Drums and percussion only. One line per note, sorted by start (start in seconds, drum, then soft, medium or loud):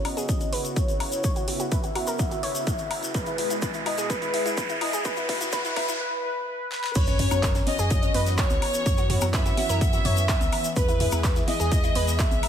0.05 open hi-hat loud
0.05 high woodblock medium
0.17 closed hi-hat soft
0.17 shaker medium
0.29 kick loud
0.29 closed hi-hat medium
0.29 shaker medium
0.41 closed hi-hat soft
0.41 shaker soft
0.53 open hi-hat loud
0.65 closed hi-hat soft
0.65 shaker medium
0.76 kick loud
0.76 closed hi-hat medium
0.76 shaker medium
0.88 closed hi-hat soft
0.88 shaker soft
1.00 open hi-hat loud
1.00 high woodblock medium
1.12 closed hi-hat soft
1.12 shaker medium
1.24 kick loud
1.24 closed hi-hat medium
1.24 shaker medium
1.36 closed hi-hat soft
1.36 shaker soft
1.48 open hi-hat loud
1.60 closed hi-hat soft
1.60 shaker medium
1.72 kick loud
1.72 closed hi-hat medium
1.72 shaker medium
1.83 closed hi-hat soft
1.83 shaker soft
1.95 open hi-hat loud
1.95 high woodblock medium
2.07 closed hi-hat soft
2.07 shaker medium
2.19 kick loud
2.19 closed hi-hat medium
2.19 shaker medium
2.31 closed hi-hat soft
2.31 shaker soft
2.43 open hi-hat loud
2.55 closed hi-hat soft
2.55 shaker medium
2.67 kick loud
2.67 closed hi-hat medium
2.67 shaker medium
2.78 closed hi-hat soft
2.78 shaker soft
2.91 open hi-hat loud
2.91 high woodblock medium
3.03 closed hi-hat soft
3.03 shaker medium
3.14 kick loud
3.14 closed hi-hat medium
3.14 shaker medium
3.26 closed hi-hat soft
3.26 shaker soft
3.38 open hi-hat loud
3.50 closed hi-hat soft
3.50 shaker medium
3.62 kick loud
3.62 closed hi-hat medium
3.62 shaker medium
3.74 closed hi-hat soft
3.74 shaker soft
3.86 open hi-hat loud
3.86 high woodblock medium
3.98 closed hi-hat soft
3.98 shaker medium
4.10 kick loud
4.10 closed hi-hat medium
4.10 shaker medium
4.22 closed hi-hat soft
4.22 shaker soft
4.34 open hi-hat loud
4.46 closed hi-hat soft
4.46 shaker medium
4.57 kick loud
4.57 closed hi-hat medium
4.57 shaker medium
4.69 closed hi-hat soft
4.69 shaker soft
4.81 open hi-hat loud
4.81 high woodblock medium
4.93 closed hi-hat soft
4.93 shaker medium
5.05 kick loud
5.05 closed hi-hat medium
5.05 shaker medium
5.16 closed hi-hat soft
5.16 shaker soft
5.29 kick loud
5.29 open hi-hat loud
5.41 closed hi-hat soft
5.41 shaker medium
5.52 kick loud
5.52 closed hi-hat medium
5.52 shaker medium
5.65 closed hi-hat soft
5.65 shaker soft
5.76 kick loud
5.76 open hi-hat loud
5.76 high woodblock medium
5.88 closed hi-hat soft
5.88 shaker medium
6.72 snare medium
6.84 snare medium
6.95 kick loud
6.95 closed hi-hat loud
6.95 crash loud
6.95 high conga loud
6.95 shaker medium
7.07 closed hi-hat soft
7.07 shaker soft
7.19 closed hi-hat medium
7.19 mid tom medium
7.19 open hi-hat loud
7.31 closed hi-hat soft
7.31 high conga medium
7.31 high woodblock medium
7.31 shaker medium
7.43 kick loud
7.43 snare loud
7.43 clap loud
7.43 closed hi-hat loud
7.43 closed hi-hat medium
7.43 shaker medium
7.55 snare soft
7.55 closed hi-hat soft
7.55 shaker soft
7.67 closed hi-hat medium
7.67 open hi-hat loud
7.67 high conga loud
7.79 closed hi-hat soft
7.79 shaker medium
7.90 kick loud
7.90 closed hi-hat medium
7.90 shaker medium
8.03 closed hi-hat soft
8.03 shaker soft
8.14 snare soft
8.14 closed hi-hat medium
8.14 open hi-hat loud
8.14 high conga medium
8.26 snare medium
8.26 closed hi-hat soft
8.26 shaker medium
8.38 kick loud
8.38 snare loud
8.38 clap loud
8.38 closed hi-hat loud
8.38 closed hi-hat medium
8.38 shaker medium
8.50 closed hi-hat soft
8.50 high conga medium
8.50 shaker soft
8.62 open hi-hat loud
8.62 high woodblock medium
8.74 closed hi-hat soft
8.74 shaker medium
8.86 kick loud
8.86 closed hi-hat medium
8.86 high conga loud
8.86 shaker medium
8.97 closed hi-hat soft
8.97 shaker soft
9.10 closed hi-hat medium
9.10 mid tom medium
9.10 open hi-hat loud
9.21 snare soft
9.21 closed hi-hat soft
9.21 high conga medium
9.21 high woodblock medium
9.21 shaker medium
9.33 kick loud
9.33 snare loud
9.33 clap loud
9.33 closed hi-hat medium
9.33 closed hi-hat loud
9.33 shaker medium
9.45 snare medium
9.45 closed hi-hat soft
9.45 shaker soft
9.57 closed hi-hat medium
9.57 open hi-hat loud
9.57 high conga medium
9.69 closed hi-hat soft
9.69 shaker medium
9.81 kick loud
9.81 closed hi-hat loud
9.81 closed hi-hat medium
9.81 shaker medium
9.93 closed hi-hat soft
9.93 shaker soft
10.05 closed hi-hat medium
10.05 mid tom loud
10.05 open hi-hat loud
10.05 high conga medium
10.17 closed hi-hat soft
10.17 shaker medium
10.29 kick loud
10.29 snare loud
10.29 clap loud
10.29 closed hi-hat medium
10.29 shaker medium
10.41 closed hi-hat soft
10.41 high conga medium
10.41 shaker soft
10.52 closed hi-hat medium
10.52 open hi-hat loud
10.52 high woodblock medium
10.64 closed hi-hat soft
10.64 shaker medium
10.76 kick loud
10.76 closed hi-hat loud
10.76 high conga medium
10.76 shaker medium
10.88 closed hi-hat soft
10.88 shaker soft
11.00 closed hi-hat medium
11.00 mid tom medium
11.00 open hi-hat loud
11.12 closed hi-hat soft
11.12 high conga medium
11.12 high woodblock medium
11.12 shaker medium
11.23 kick loud
11.23 snare loud
11.23 clap loud
11.23 closed hi-hat medium
11.23 shaker medium
11.36 snare soft
11.36 closed hi-hat soft
11.36 shaker soft
11.48 closed hi-hat medium
11.48 open hi-hat loud
11.48 high conga medium
11.60 closed hi-hat soft
11.60 shaker medium
11.71 kick loud
11.71 closed hi-hat medium
11.71 shaker medium
11.84 closed hi-hat soft
11.84 shaker soft
11.95 snare soft
11.95 closed hi-hat medium
11.95 open hi-hat loud
11.95 high conga medium
12.07 snare medium
12.07 closed hi-hat soft
12.07 shaker medium
12.19 kick loud
12.19 snare loud
12.19 clap loud
12.19 closed hi-hat medium
12.19 shaker medium
12.31 closed hi-hat soft
12.31 high conga medium
12.31 shaker soft
12.43 closed hi-hat medium
12.43 open hi-hat loud
12.43 high woodblock medium